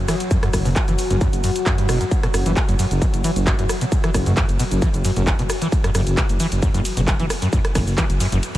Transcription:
Already playing: ambient pad F#3 F#4
0.08 acid bass E3, cross-stick, open hi-hat, ride, shaker
0.20 closed hi-hat, shaker
0.31 acid bass F#2, kick, closed hi-hat, ride, shaker
0.43 acid bass F#2, cross-stick, closed hi-hat
0.53 detuned saw bass F#1, kick, cross-stick, open hi-hat, ride, shaker
0.65 detuned saw bass F#1, acid bass B2, open hi-hat, shaker
0.76 kick, clap, closed hi-hat, ride, shaker
0.88 detuned saw bass F#1, acid bass E3, closed hi-hat, shaker
0.99 open hi-hat, ride, shaker
1.11 detuned saw bass F#1, acid bass F#2, closed hi-hat, shaker
1.21 acid bass F#2, kick, closed hi-hat, ride, shaker
1.33 detuned saw bass F#1, closed hi-hat, shaker
1.44 acid bass F#2, open hi-hat, ride, shaker
1.56 closed hi-hat, shaker
1.66 detuned saw bass F#2, acid bass F#3, kick, clap, closed hi-hat, ride, shaker
1.78 acid bass G2, closed hi-hat
1.89 detuned saw bass F#1, acid bass B2, cross-stick, open hi-hat, ride, shaker
2.01 acid bass F#2, closed hi-hat, shaker
2.11 kick, closed hi-hat, ride, shaker
2.23 acid bass B2, cross-stick, closed hi-hat
2.34 detuned saw bass F#1, cross-stick, open hi-hat, ride, shaker
2.46 detuned saw bass F#1, acid bass E3, closed hi-hat, shaker
2.57 kick, clap, closed hi-hat, ride, shaker
2.69 detuned saw bass F#1, acid bass F#2, closed hi-hat, shaker
2.79 acid bass F#2, open hi-hat, ride, shaker
2.91 detuned saw bass F#1, closed hi-hat, shaker
3.02 acid bass B2, kick, closed hi-hat, ride, shaker
3.14 detuned saw bass F#1, closed hi-hat, shaker
3.24 acid bass E3, open hi-hat, ride, shaker
3.36 detuned saw bass F#1, closed hi-hat, shaker
3.47 acid bass F#2, kick, clap, closed hi-hat, ride, shaker
3.59 detuned saw bass F#1, acid bass F#2, closed hi-hat
3.69 cross-stick, open hi-hat, ride, shaker
3.81 acid bass B2, closed hi-hat, shaker
3.92 kick, closed hi-hat, ride, shaker
4.04 acid bass E3, cross-stick, closed hi-hat
4.14 detuned saw bass F#1, kick, cross-stick, open hi-hat, ride, shaker
4.26 detuned saw bass F#1, acid bass F#2, closed hi-hat, shaker
4.37 acid bass F#2, kick, clap, closed hi-hat, ride, shaker
4.49 detuned saw bass F#1, closed hi-hat, shaker
4.59 acid bass B2, open hi-hat, ride, shaker
4.71 detuned saw bass F#1, closed hi-hat, shaker
4.82 acid bass E3, kick, closed hi-hat, ride, shaker
4.94 detuned saw bass F#1, closed hi-hat, shaker
5.05 acid bass F#2, open hi-hat, ride, shaker
5.16 detuned saw bass F#1, acid bass F#2, closed hi-hat, shaker
5.27 kick, clap, closed hi-hat, ride, shaker
5.39 detuned saw bass F#1, acid bass B2, closed hi-hat
5.50 cross-stick, open hi-hat, ride, shaker
5.62 acid bass E3, closed hi-hat, shaker
5.72 kick, closed hi-hat, ride, shaker
5.84 acid bass F#2, cross-stick, closed hi-hat
5.95 detuned saw bass F#1, acid bass F#2, cross-stick, open hi-hat, ride, shaker
6.07 detuned saw bass F#1, closed hi-hat, shaker
6.17 acid bass B2, kick, clap, closed hi-hat, ride, shaker
6.29 detuned saw bass F#1, closed hi-hat, shaker
6.40 acid bass E3, open hi-hat, ride, shaker
6.52 detuned saw bass F#1, closed hi-hat, shaker
6.62 acid bass F#2, kick, closed hi-hat, ride, shaker
6.74 detuned saw bass F#1, acid bass F#2, closed hi-hat, shaker
6.85 open hi-hat, ride, shaker
6.97 detuned saw bass F#1, acid bass B2, closed hi-hat, shaker
7.08 kick, clap, closed hi-hat, ride, shaker
7.20 detuned saw bass F#1, acid bass E3, closed hi-hat
7.30 cross-stick, open hi-hat, ride, shaker
7.42 acid bass F#2, closed hi-hat, shaker
7.53 acid bass F#2, kick, closed hi-hat, ride, shaker
7.65 cross-stick, closed hi-hat
7.75 detuned saw bass F#1, acid bass B2, kick, cross-stick, open hi-hat, ride, shaker
7.87 detuned saw bass F#1, open hi-hat, shaker
7.98 acid bass E3, kick, clap, closed hi-hat, ride, shaker
8.10 detuned saw bass F#1, closed hi-hat, shaker
8.20 acid bass F#2, open hi-hat, ride, shaker
8.32 detuned saw bass F#1, acid bass F#2, closed hi-hat, shaker
8.43 closed hi-hat, ride, shaker

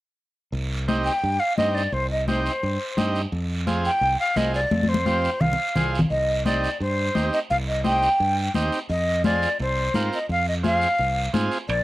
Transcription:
0.52 fingered electric bass C2, high conga, long guiro
0.88 transistor combo organ C4 D#4 G4, high conga, short guiro
1.05 flute G5, short guiro
1.23 fingered electric bass G2, high conga, long guiro
1.40 flute F5
1.57 fingered electric bass G2, transistor combo organ C4 D#4 G4, flute D#5, high conga, short guiro
1.75 flute D5, short guiro
1.92 fingered electric bass C2, flute C5, high conga, long guiro
2.11 flute D#5
2.28 transistor combo organ C4 D#4 G4, flute C5, high conga, short guiro
2.46 short guiro
2.63 fingered electric bass G2, high conga, long guiro
2.97 fingered electric bass G2, transistor combo organ C4 D#4 G4, high conga, short guiro
3.15 short guiro
3.32 fingered electric bass F2, high conga, long guiro
3.67 transistor combo organ C4 F4 G#4, high conga, short guiro
3.85 flute G5, short guiro
4.01 fingered electric bass C2, high conga, long guiro
4.20 flute F5
4.36 fingered electric bass C2, transistor combo organ C4 F4 G#4, flute D#5, high conga, short guiro
4.54 flute D5, short guiro
4.71 fingered electric bass F2, high conga, long guiro
4.83 high conga
4.89 flute C5
4.94 high conga
5.06 transistor combo organ C4 F4 G4, high conga, short guiro
5.24 short guiro
5.41 fingered electric bass C2, flute F5, low conga, long guiro
5.53 low conga
5.76 fingered electric bass C2, transistor combo organ C4 F4 G#4, low conga, short guiro
5.95 short guiro
5.99 low conga
6.10 fingered electric bass C2, flute D#5, high conga, long guiro
6.45 transistor combo organ C4 D#4 G4, flute D5, high conga, short guiro
6.64 short guiro
6.80 fingered electric bass G2, flute C5, high conga, long guiro
7.15 fingered electric bass D#2, transistor combo organ C4 D#4 G4, high conga, short guiro
7.33 flute D#5, short guiro
7.50 fingered electric bass C2, flute F5, high conga, long guiro
7.67 flute D#5
7.84 transistor combo organ C4 D#4 G4, flute G5, high conga, short guiro
8.03 short guiro
8.20 fingered electric bass G2, high conga, long guiro
8.54 fingered electric bass D#2, transistor combo organ C4 D#4 G4, high conga, short guiro
8.72 short guiro
8.89 fingered electric bass F2, flute D#5, high conga, long guiro
9.24 transistor combo organ C4 F4 G#4, flute D5, high conga, short guiro
9.42 short guiro
9.59 fingered electric bass C2, flute C5, high conga, long guiro
9.94 fingered electric bass G#2, transistor combo organ C4 F4 A#4, high conga, short guiro
10.13 flute D#5, short guiro
10.29 fingered electric bass F2, flute F5, high conga, long guiro
10.48 flute D#5
10.63 transistor combo organ C4 F4 G#4, flute F5, high conga, short guiro
10.82 short guiro
10.99 fingered electric bass C2, high conga, long guiro
11.33 fingered electric bass G#2, transistor combo organ C4 F4 G#4, high conga, short guiro
11.52 short guiro
11.69 fingered electric bass A#1, flute D5, high conga, high timbale, long guiro

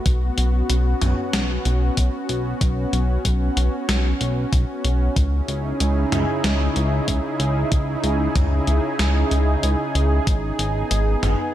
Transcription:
Already playing: analog synth pad B3 F#4
0.06 analog synth bass B1, analog synth pad C#4, kick, closed hi-hat
0.38 analog synth bass B1, closed hi-hat
0.70 analog synth bass B1, closed hi-hat
1.01 analog synth bass B1, closed hi-hat, mid tom
1.33 analog synth bass B1, snare, closed hi-hat
1.65 analog synth bass B1, closed hi-hat
1.97 analog synth bass B1, kick, closed hi-hat
2.29 analog synth bass B1, closed hi-hat
2.61 analog synth bass B1, kick, closed hi-hat
2.93 analog synth bass B1, closed hi-hat
3.25 analog synth bass B1, kick, closed hi-hat
3.57 analog synth bass B1, closed hi-hat
3.89 analog synth bass B1, snare, closed hi-hat
4.21 analog synth bass B1, closed hi-hat
4.53 analog synth bass B1, kick, closed hi-hat
4.84 analog synth bass B1, closed hi-hat
5.16 analog synth bass C#2, analog synth pad C#3 D#4 E4 G#4, kick, closed hi-hat
5.48 analog synth bass C#2, closed hi-hat
5.80 analog synth bass C#2, closed hi-hat
6.12 analog synth bass C#2, closed hi-hat, mid tom
6.44 analog synth bass C#2, snare, closed hi-hat
6.76 analog synth bass C#2, closed hi-hat
7.08 analog synth bass C#2, kick, closed hi-hat
7.40 analog synth bass C#2, closed hi-hat
7.72 analog synth bass C#2, kick, closed hi-hat
8.04 analog synth bass C#2, closed hi-hat
8.36 analog synth bass C#2, kick, closed hi-hat, mid tom
8.67 analog synth bass C#2, closed hi-hat
8.99 analog synth bass C#2, snare, closed hi-hat
9.31 analog synth bass C#2, closed hi-hat
9.63 analog synth bass C#2, closed hi-hat
9.95 analog synth bass C#2, closed hi-hat
10.27 analog synth bass G#1, analog synth pad B3, kick, closed hi-hat
10.59 analog synth bass G#1, closed hi-hat
10.91 analog synth bass G#1, closed hi-hat
11.23 analog synth bass G#1, closed hi-hat, mid tom

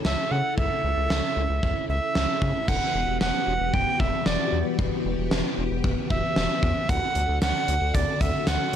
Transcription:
Already playing: string machine C#3 C#4 E4 A4
0.05 analog synth bass C#2, recorder E5, snare
0.31 analog synth bass C#3, recorder F#5
0.58 analog synth bass C#2, recorder E5, kick
0.84 analog synth bass C#2
0.97 analog synth bass C#2
1.10 analog synth bass C#2, snare
1.37 analog synth bass C#2
1.50 analog synth bass C#2
1.63 analog synth bass C#2, kick
1.89 analog synth bass C#2, recorder E5
2.15 analog synth bass C#2, snare
2.42 analog synth bass C#3, kick
2.68 analog synth bass E1, string machine E3 B3 F#4 G4, recorder F#5, kick, crash
2.95 analog synth bass E1
3.08 analog synth bass E1
3.21 analog synth bass E1, recorder F#5, snare
3.47 analog synth bass E1
3.60 analog synth bass E1
3.74 analog synth bass E1, recorder G5, kick
4.00 analog synth bass E1, recorder E5, kick
4.26 analog synth bass E1, recorder D5, snare
4.52 analog synth bass E2
4.79 analog synth bass E1, kick
5.05 analog synth bass E1
5.18 analog synth bass E1
5.31 analog synth bass E1, snare
5.58 analog synth bass E1
5.71 analog synth bass E1
5.84 analog synth bass E1, kick
6.10 analog synth bass E1, recorder E5, kick
6.36 analog synth bass E1, snare
6.63 analog synth bass E2, kick
6.89 analog synth bass D2, string machine D3 D4 F#4 A4, recorder F#5, kick, closed hi-hat
7.15 analog synth bass D2, closed hi-hat
7.29 analog synth bass D2
7.42 analog synth bass D2, recorder F#5, snare, closed hi-hat
7.68 analog synth bass D2, closed hi-hat
7.81 analog synth bass D2
7.94 analog synth bass D2, recorder D5, kick, closed hi-hat
8.21 analog synth bass D2, recorder E5, kick, closed hi-hat
8.47 analog synth bass D2, recorder F#5, snare, closed hi-hat

